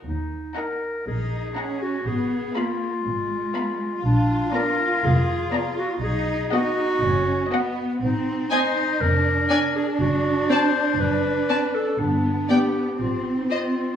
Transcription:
0.06 0.46 D#2 soft
0.06 0.53 D#4 soft
0.56 0.94 D#4 soft
0.56 1.06 A#4 medium
0.56 0.93 F#5 soft
0.56 0.94 A#5 soft
1.06 1.46 A#1 soft
1.06 1.52 D#4 soft
1.06 1.83 G#4 medium
1.55 2.05 C#4 soft
1.55 1.93 D#4 soft
1.55 1.94 F#5 soft
1.55 1.93 A#5 soft
1.82 2.09 F#4 medium
2.06 2.46 G#1 soft
2.06 2.55 B3 soft
2.06 2.56 G#4 medium
2.55 3.05 A#3 soft
2.55 2.92 B3 soft
2.55 4.02 F4 medium
2.55 2.93 F5 soft
2.55 2.93 B5 soft
3.06 3.45 G#1 soft
3.06 4.03 G#3 soft
3.55 3.92 B3 soft
3.55 3.92 F5 soft
3.55 3.92 B5 soft
4.05 4.44 A#1 medium
4.05 4.53 D4 medium
4.05 5.99 F4 medium
4.54 4.91 B3 soft
4.54 5.06 A#4 medium
4.54 4.91 D5 soft
4.54 4.91 A#5 medium
5.04 5.43 F1 medium
5.04 5.78 G#4 medium
5.53 5.91 B3 soft
5.53 5.90 D5 soft
5.53 5.90 A#5 medium
5.78 5.89 F#4 medium
6.02 6.42 B1 medium
6.02 6.51 D#4 medium
6.02 6.52 G#4 medium
6.52 6.90 B3 medium
6.52 7.01 D#4 medium
6.52 7.72 F#4 medium
6.52 6.89 D#5 medium
6.52 6.89 F#5 medium
7.02 7.42 F#1 medium
7.02 7.52 C#4 medium
7.52 8.01 B3 medium
7.52 7.89 B3 medium
7.52 7.89 D#5 soft
7.52 7.89 F#5 medium
8.01 8.41 G#1 medium
8.01 8.50 C4 medium
8.01 8.48 D#4 medium
8.51 8.60 C4 soft
8.51 9.01 D#4 medium
8.51 9.03 C5 medium
8.51 8.59 D#5 soft
8.51 8.59 G#5 medium
9.00 9.40 F1 medium
9.00 12.00 D4 medium
9.00 9.75 A#4 medium
9.50 9.59 D4 soft
9.50 9.58 D5 soft
9.50 9.58 G#5 soft
9.76 9.87 G#4 medium
10.00 10.39 F#1 medium
10.00 10.49 F#4 medium
10.49 10.57 C4 soft
10.49 10.99 C5 medium
10.49 10.57 D5 soft
10.49 10.59 A5 soft
11.00 11.39 F#1 medium
11.00 11.76 B4 medium
11.49 11.57 C4 soft
11.49 11.57 D5 soft
11.49 11.58 A5 soft
11.75 12.01 A4 medium
11.99 12.39 G1 medium
11.99 12.97 B3 soft
11.99 12.52 D4 medium
12.49 12.58 B3 soft
12.49 12.99 G4 medium
12.49 12.57 D5 soft
12.49 12.58 G5 soft
12.99 13.40 G#1 soft
12.99 13.96 C4 soft
12.99 13.39 F4 medium
13.38 13.49 D#4 soft
13.50 13.59 C4 soft
13.50 13.96 F4 medium
13.50 13.58 C5 soft
13.50 13.59 D#5 soft

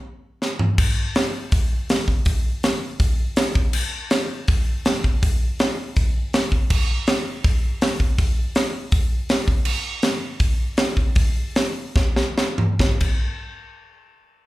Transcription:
0.42 snare medium
0.59 floor tom medium
0.78 kick loud
0.78 crash loud
1.15 snare loud
1.15 open hi-hat medium
1.52 kick loud
1.52 open hi-hat medium
1.89 snare loud
1.89 open hi-hat medium
2.08 kick medium
2.25 kick loud
2.25 open hi-hat medium
2.63 snare loud
2.63 open hi-hat medium
3.00 kick loud
3.00 open hi-hat medium
3.36 snare loud
3.36 open hi-hat medium
3.55 kick loud
3.73 crash loud
4.10 snare loud
4.10 open hi-hat medium
4.48 kick loud
4.48 open hi-hat medium
4.85 snare loud
4.85 open hi-hat medium
5.04 kick medium
5.23 kick loud
5.23 open hi-hat medium
5.59 snare loud
5.59 open hi-hat medium
5.96 kick loud
5.96 open hi-hat medium
6.33 snare loud
6.33 open hi-hat medium
6.52 kick medium
6.70 kick loud
6.70 crash loud
7.07 snare loud
7.07 open hi-hat medium
7.44 kick loud
7.44 open hi-hat medium
7.81 snare loud
7.81 open hi-hat medium
8.00 kick medium
8.18 kick loud
8.18 open hi-hat medium
8.55 snare loud
8.55 open hi-hat medium
8.92 kick loud
8.92 open hi-hat medium
9.29 snare loud
9.29 open hi-hat medium
9.48 kick loud
9.65 crash loud
10.02 snare loud
10.02 open hi-hat medium
10.40 kick loud
10.40 open hi-hat medium
10.77 snare loud
10.77 open hi-hat medium
10.97 kick medium
11.15 kick loud
11.15 open hi-hat medium
11.55 snare loud
11.55 open hi-hat medium
11.96 kick loud
11.96 snare medium
12.16 snare medium
12.38 snare loud
12.58 floor tom medium
12.79 kick loud
12.79 snare loud
13.00 kick loud
13.00 crash medium

